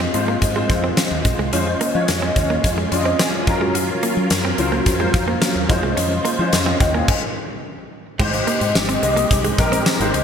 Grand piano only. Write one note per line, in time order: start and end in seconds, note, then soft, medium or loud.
0.00 0.13 G#3 medium
0.00 0.14 C4 medium
0.00 0.14 F4 medium
0.00 0.14 C5 medium
0.13 0.43 G#3 medium
0.13 0.43 C4 medium
0.13 0.43 F4 medium
0.13 0.43 C5 medium
0.55 1.24 G#3 medium
0.55 1.24 C4 medium
0.55 1.24 F4 medium
0.55 1.24 C5 medium
1.53 1.82 G#3 medium
1.53 1.82 C#4 medium
1.53 1.82 F4 medium
1.53 1.83 C5 medium
1.94 2.62 G#3 medium
1.94 2.63 C#4 medium
1.94 2.63 F4 medium
1.94 2.63 C#5 medium
2.91 3.47 G#3 medium
2.91 3.46 C#4 medium
2.91 3.46 F4 medium
2.91 2.99 D5 medium
2.91 3.18 C6 medium
2.99 3.51 D#5 medium
3.20 3.45 G#5 medium
3.47 4.36 F#3 medium
3.47 4.36 C#4 medium
3.47 4.36 F4 medium
3.47 4.37 A#4 medium
3.47 3.73 F5 medium
4.58 4.87 F#3 medium
4.58 4.88 C#4 medium
4.58 4.88 F4 medium
4.58 4.88 C5 medium
4.99 5.68 F#3 medium
4.99 5.68 C#4 medium
4.99 5.68 F4 medium
4.99 5.68 C5 medium
5.69 6.25 G#3 medium
5.69 6.25 C#4 medium
5.69 6.25 F4 medium
5.69 6.25 C5 medium
6.38 7.07 G#3 medium
6.38 7.07 C#4 medium
6.38 7.07 F4 medium
6.38 6.52 C5 medium
6.53 6.66 C5 medium
6.53 6.66 D#5 medium
6.67 6.80 C#5 medium
6.67 6.80 F5 medium
6.80 6.94 D#5 medium
6.80 6.94 G5 medium
6.94 7.21 F5 medium
6.94 7.21 G#5 medium
8.19 8.29 G#3 medium
8.19 8.29 D#4 medium
8.19 8.29 G4 medium
8.19 8.30 C5 loud
8.33 8.82 G#3 medium
8.33 8.82 D#4 medium
8.33 8.82 G4 medium
8.33 8.82 C5 medium
9.02 9.42 G#3 medium
9.02 9.42 D#4 medium
9.02 9.42 G4 medium
9.02 9.42 D#5 medium
9.58 9.87 G#3 medium
9.58 9.88 D#4 medium
9.58 9.88 G4 medium
9.58 9.88 A#4 loud
10.00 10.24 G#3 medium
10.00 10.24 D#4 medium
10.00 10.24 G4 medium
10.00 10.24 C5 medium